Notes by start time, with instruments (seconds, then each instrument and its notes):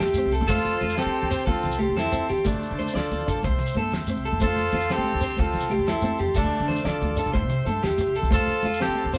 Already playing: transistor combo organ E5 G5 C6
0.00 upright bass E2, clean electric guitar G4, snare, closed hi-hat
0.07 low conga, shekere
0.14 closed hi-hat, high conga, shekere
0.18 clean electric guitar C4
0.25 upright bass C2
0.31 clean electric guitar A4, closed hi-hat, shekere
0.40 upright bass E2, low conga, shekere
0.47 upright bass F2, clean electric guitar A3 C5, trumpet F4, alto saxophone A4, transistor combo organ C5 A5, kick, closed hi-hat, high conga, shekere
0.57 low conga
0.65 upright bass F2, closed hi-hat
0.74 low conga
0.81 upright bass F2, clean electric guitar F4, closed hi-hat, high conga, low conga, shekere
0.89 shekere
0.97 trumpet C4, clean electric guitar C4 A4, alto saxophone G4, snare, closed hi-hat, shekere
1.05 upright bass F3
1.15 closed hi-hat
1.22 upright bass D2, low conga
1.31 clean electric guitar C4 C5, snare, closed hi-hat, shekere
1.40 shekere
1.46 upright bass D2, alto saxophone F4, clean electric guitar A4, kick, closed hi-hat, high conga, shekere
1.50 trumpet C4
1.57 low conga
1.63 upright bass C2, closed hi-hat, low conga, shekere
1.72 low conga, shekere
1.79 clean electric guitar A3 G4, closed hi-hat, high conga, low conga, shekere
1.89 upright bass F2
1.97 trumpet C4, alto saxophone E4, clean electric guitar A4, snare, closed hi-hat, shekere
2.05 low conga, shekere
2.12 upright bass F2, clean electric guitar C4, closed hi-hat, high conga, shekere
2.28 upright bass F2, clean electric guitar G4, closed hi-hat, shekere
2.37 low conga, shekere
2.45 upright bass D2, clean electric guitar A3, trumpet A3, alto saxophone D4, transistor combo organ D6, muted clean electric guitar stroke, kick, closed hi-hat, high conga, low conga, shekere
2.54 upright bass D2, low conga
2.63 closed hi-hat, low conga
2.71 upright bass D3, low conga
2.79 clean electric guitar C5, closed hi-hat, high conga, low conga, shekere
2.88 shekere
2.94 upright bass D2, clean electric guitar D4 D5, trumpet F4, alto saxophone A4, snare, closed hi-hat
3.04 low conga, shekere
3.11 upright bass D2, closed hi-hat, high conga, shekere
3.20 low conga, shekere
3.28 clean electric guitar D4 A4, kick, closed hi-hat, shekere
3.36 upright bass G2, low conga
3.43 upright bass C2, clean electric guitar C5, transistor combo organ E5 G5 C6, kick, closed hi-hat, high conga, shekere
3.51 upright bass C3
3.59 closed hi-hat, low conga, shekere
3.66 shekere
3.74 upright bass G2, clean electric guitar A#3 A4, closed hi-hat, high conga, shekere
3.91 upright bass E2, snare, closed hi-hat, low conga, shekere
3.99 low conga, shekere
4.07 clean electric guitar C4, closed hi-hat, high conga, low conga, shekere
4.15 upright bass C2, low conga, shekere
4.23 clean electric guitar A4, closed hi-hat, low conga
4.32 upright bass E2, low conga
4.40 upright bass F2, clean electric guitar A3 C5, alto saxophone A4, transistor combo organ C5 A5, kick, closed hi-hat, high conga, shekere
4.47 trumpet F4, low conga, shekere
4.56 upright bass F2, closed hi-hat
4.64 low conga
4.71 upright bass F2, clean electric guitar F4, closed hi-hat, high conga, low conga, shekere
4.80 shekere
4.88 clean electric guitar C4 A4, alto saxophone G4, snare, closed hi-hat, shekere
4.93 trumpet C4
4.98 upright bass F3
5.04 closed hi-hat, high conga
5.13 upright bass D2, low conga
5.21 clean electric guitar C4 C5, snare, closed hi-hat, shekere
5.29 shekere
5.37 upright bass D2, trumpet C4, alto saxophone F4, clean electric guitar A4, kick, closed hi-hat, high conga, shekere
5.45 low conga
5.53 upright bass C2, closed hi-hat, low conga, shekere
5.60 low conga, shekere
5.70 clean electric guitar A3 G4, closed hi-hat, high conga, low conga
5.79 upright bass F2
5.86 trumpet C4, alto saxophone E4, clean electric guitar A4, snare, closed hi-hat, shekere
5.93 low conga, shekere
6.02 upright bass F2, clean electric guitar C4, closed hi-hat, high conga, shekere
6.18 upright bass F2, clean electric guitar G4, closed hi-hat, shekere
6.26 low conga, shekere
6.34 upright bass D2, clean electric guitar A3 A4, trumpet A3, alto saxophone D4, transistor combo organ F5 D6, kick, closed hi-hat, high conga, shekere
6.44 upright bass D2, low conga
6.55 closed hi-hat
6.60 upright bass D3, low conga
6.68 clean electric guitar C5, closed hi-hat, high conga, low conga, shekere
6.76 shekere
6.84 upright bass D2, clean electric guitar D4 D5, trumpet F4, alto saxophone A4, snare, closed hi-hat, shekere
7.01 upright bass D2, closed hi-hat, high conga
7.09 low conga
7.16 clean electric guitar D4 A4, closed hi-hat, shekere
7.26 upright bass B1
7.33 upright bass C2, clean electric guitar C5, transistor combo organ E5 G5 C6, kick, closed hi-hat, high conga, shekere
7.42 upright bass C3, low conga
7.50 closed hi-hat, low conga, shekere
7.58 low conga
7.66 upright bass G2, clean electric guitar A4, closed hi-hat, high conga, low conga, shekere
7.82 upright bass E2, clean electric guitar G4, snare, closed hi-hat, shekere
7.90 low conga, shekere
7.98 muted clean electric guitar stroke, closed hi-hat, high conga, shekere
8.07 upright bass C2
8.15 clean electric guitar A4, closed hi-hat, shekere
8.22 upright bass C2, low conga, shekere
8.31 upright bass F2, clean electric guitar A3 C5, trumpet F4, alto saxophone A4, transistor combo organ F5 A5, kick, closed hi-hat, high conga, shekere
8.38 low conga, shekere
8.47 upright bass F2, closed hi-hat
8.55 low conga
8.63 upright bass F2, clean electric guitar F4, closed hi-hat, high conga, low conga, shekere
8.73 shekere
8.80 clean electric guitar C4 A4, trumpet C4, alto saxophone G4, snare, closed hi-hat, shekere
8.88 upright bass F3
8.95 closed hi-hat, high conga
9.04 upright bass D2, low conga
9.13 clean electric guitar C4 C5, trumpet D4, snare, closed hi-hat, shekere